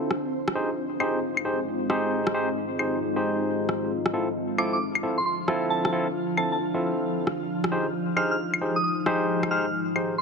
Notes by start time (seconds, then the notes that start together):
Already playing: C4 D4 F4 C5
0.11 D#4, cross-stick
0.28 G#3
0.48 cross-stick
0.55 D#4 G4 G#4 C5
1.00 D#4 G4 G#4 C5, claves
1.37 claves
1.45 D#4 G4 G#4 C5
1.90 D#4 G4 G#4 C5, cross-stick
2.27 cross-stick
2.34 D#4 G4 G#4 C5
2.79 D#4 G4 G#4 C5, claves
3.16 D#4 G4 G#4 C5
3.69 cross-stick
3.91 F3 D4 F6
4.06 cross-stick
4.14 C4 E4 F4 A4
4.41 C5
4.58 C4 E4 F4 A4 D6, claves
4.73 D6
4.95 claves
5.03 C4 E4 F4 A4
5.18 C6
5.26 C6
5.48 C4 E4 F4 A4, cross-stick
5.70 A5
5.85 A5, cross-stick
5.93 C4 E4 F4 A4
6.37 C4 E4 F4 A4 A5, claves
6.52 A5
6.74 C4 E4 F4 A4
7.27 D#4, cross-stick
7.64 cross-stick
7.70 G#3 D#4 G4 G#4 C5
8.17 D#4 G4 G#4 C5 F6, claves
8.31 F6
8.54 claves
8.61 D#4 G4 G#4 C5
8.76 D#6
8.84 D#6
9.06 D#4 G4 G#4 C5, cross-stick
9.43 cross-stick, claves
9.51 D#4 G4 G#4 C5 F6
9.96 D#4 G4 G#4 C5, claves
10.18 C6